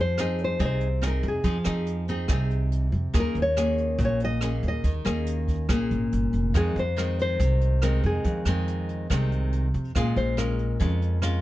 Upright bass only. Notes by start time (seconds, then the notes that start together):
Already playing: F2
0.60 C2
1.23 F2
1.44 F2
1.66 F2
2.28 C2
2.92 F2
3.14 D#2
3.35 D#2
3.98 A#1
4.63 D#2
4.84 D#2
5.06 D#2
5.69 A#1
5.91 G#1
6.13 G1
6.33 F1
6.54 F2
6.76 F2
7.40 C2
8.04 F2
8.25 F2
8.46 F2
9.10 C2
9.74 F2
9.96 A#1
10.16 A#1
10.81 F2